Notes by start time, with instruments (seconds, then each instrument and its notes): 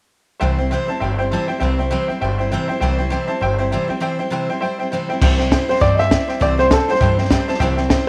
0.40 upright bass C2, steel-string acoustic guitar C3 E3 G3 C4 E4 C5, honky-tonk piano C5 E5 G5
0.57 steel-string acoustic guitar C4 E4 C5, honky-tonk piano C5 E5 G5
0.62 steel-string acoustic guitar G3
0.70 steel-string acoustic guitar C3 E3 G3 C4 E4 C5, honky-tonk piano C5 E5 G5
0.88 steel-string acoustic guitar C4 E4 C5, honky-tonk piano C5 E5 A5, muted upright bass stroke
0.92 steel-string acoustic guitar G3
1.00 upright bass G1, steel-string acoustic guitar G3 C4, honky-tonk piano C5 E5 G5
1.04 steel-string acoustic guitar E4 C5
1.18 steel-string acoustic guitar C4 E4 C5, honky-tonk piano C5 E5 G5
1.22 steel-string acoustic guitar G3
1.31 steel-string acoustic guitar C3 E3 G3 C4 E4 C5, honky-tonk piano C5 E5 A5
1.47 steel-string acoustic guitar C4 E4 C5, honky-tonk piano C5 E5 G5, muted upright bass stroke
1.52 steel-string acoustic guitar G3
1.59 upright bass C2, steel-string acoustic guitar C3 E3 G3 C4 E4 C5, honky-tonk piano C5 E5 G5
1.78 steel-string acoustic guitar G3 C4 E4 C5, honky-tonk piano C5 E5 G5
1.90 steel-string acoustic guitar C3 E3 G3 C4 E4 C5, honky-tonk piano C5 E5 G5
2.07 steel-string acoustic guitar E4, honky-tonk piano C5 E5 G5, muted upright bass stroke
2.12 steel-string acoustic guitar G3 C4
2.21 upright bass G1, steel-string acoustic guitar G3 C4 E4, honky-tonk piano C5 E5 G5
2.25 steel-string acoustic guitar C5
2.38 steel-string acoustic guitar C4 E4 C5, honky-tonk piano C5 E5 G5
2.43 steel-string acoustic guitar G3
2.50 steel-string acoustic guitar C3 E3 G3 C4 E4, honky-tonk piano C5 E5 G5
2.54 steel-string acoustic guitar C5
2.67 steel-string acoustic guitar C4 E4 C5, honky-tonk piano C5 E5 G5, muted upright bass stroke
2.72 steel-string acoustic guitar G3
2.80 upright bass C2, steel-string acoustic guitar C3 E3 G3 C4 E4 C5, honky-tonk piano C5 E5 G5
2.97 steel-string acoustic guitar C4 E4 C5, honky-tonk piano C5 E5 G5
3.02 steel-string acoustic guitar G3
3.10 steel-string acoustic guitar C3 E3 G3 C4 E4 C5, honky-tonk piano C5 E5 G5
3.27 steel-string acoustic guitar C4 E4 C5, honky-tonk piano C5 E5 A5, muted upright bass stroke
3.31 steel-string acoustic guitar G3
3.41 upright bass G1, steel-string acoustic guitar G3 C4 E4 C5, honky-tonk piano C5 E5 G5
3.58 steel-string acoustic guitar G3 C4 E4 C5, honky-tonk piano C5 E5 G5
3.71 steel-string acoustic guitar C3 E3 G3 C4 E4 C5, honky-tonk piano C5 E5 G5
3.88 steel-string acoustic guitar G3 C4 E4 C5, honky-tonk piano C5 E5 G5, muted upright bass stroke
4.00 steel-string acoustic guitar C3 E3 G3 C4 E4 C5, honky-tonk piano C5 E5 G5
4.19 steel-string acoustic guitar G3 C4 E4 C5, honky-tonk piano C5 E5 G5
4.30 steel-string acoustic guitar C3 E3 G3 C4 E4 C5, honky-tonk piano C5 E5 G5
4.49 steel-string acoustic guitar G3 C4 E4 C5, honky-tonk piano C5 E5 G5
4.60 steel-string acoustic guitar G3 C4, honky-tonk piano C5 E5 G5
4.64 steel-string acoustic guitar E4 C5
4.78 steel-string acoustic guitar C4 E4 C5, honky-tonk piano C5 E5 G5
4.83 steel-string acoustic guitar G3
4.91 steel-string acoustic guitar C3 E3 G3 C4 E4 C5, honky-tonk piano C5 E5 G5
5.08 steel-string acoustic guitar C4 E4 C5, honky-tonk piano C5 E5 G5
5.13 steel-string acoustic guitar G3
5.21 upright bass C2, steel-string acoustic guitar C3 E3 G3 C4 E4 C5, honky-tonk piano C5 E5 G5, kick, snare, crash
5.38 steel-string acoustic guitar C4 E4 C5, honky-tonk piano C5 E5 G5, snare
5.42 steel-string acoustic guitar G3
5.51 steel-string acoustic guitar G3 C4 E4 C5, honky-tonk piano C5 E5 G5, kick, snare, hi-hat pedal
5.68 steel-string acoustic guitar G3 C4 E4 C5, honky-tonk piano C5 E5 G5, upright piano C5, muted upright bass stroke, snare
5.76 snare
5.80 upright bass G2, steel-string acoustic guitar C3 E3 G3 C4 E4 C5, honky-tonk piano C5 E5 G5, upright piano D5, kick, snare
5.95 steel-string acoustic guitar E4 C5, honky-tonk piano C5, upright piano D#5
5.99 steel-string acoustic guitar G3 C4, honky-tonk piano E5 G5, upright piano E5, snare
6.10 steel-string acoustic guitar G3 C4 E4 C5, honky-tonk piano C5 E5 G5, kick, snare, hi-hat pedal
6.27 steel-string acoustic guitar G3 C4 E4 C5, honky-tonk piano C5 E5 G5, muted upright bass stroke, snare
6.40 upright bass C2, steel-string acoustic guitar C3 E3 G3 C4 E4 C5, honky-tonk piano C5 E5 G5, upright piano D5, kick, snare
6.57 steel-string acoustic guitar G3 C4 E4 C5, honky-tonk piano C5 E5 G5, upright piano C5, snare
6.70 steel-string acoustic guitar G3 C4 E4 C5, upright piano A4, honky-tonk piano C5 E5 G5, kick, snare, hi-hat pedal
6.88 steel-string acoustic guitar G3 C4 E4 C5, honky-tonk piano C5 E5 G5, upright piano C5, muted upright bass stroke, snare
6.95 snare
7.00 upright bass G2, steel-string acoustic guitar C3 E3 G3 C4 E4 C5, honky-tonk piano C5 E5 G5, kick, snare
7.18 steel-string acoustic guitar C4 E4 C5, honky-tonk piano C5 E5 G5, snare
7.22 steel-string acoustic guitar G3, snare
7.30 steel-string acoustic guitar G3 C4 E4 C5, honky-tonk piano C5 E5 G5, kick, snare, hi-hat pedal
7.47 steel-string acoustic guitar G3 C4 E4 C5, honky-tonk piano C5 E5 A5, muted upright bass stroke, snare
7.54 snare
7.59 upright bass C2, steel-string acoustic guitar C3 E3 G3 C4 E4, honky-tonk piano C5 E5 G5, kick, snare
7.63 steel-string acoustic guitar C5
7.76 steel-string acoustic guitar C4 E4 C5, honky-tonk piano C5 E5 G5, snare
7.81 steel-string acoustic guitar G3
7.89 steel-string acoustic guitar G3 C4, honky-tonk piano C5 E5 G5, kick, snare, hi-hat pedal
7.93 steel-string acoustic guitar E4 C5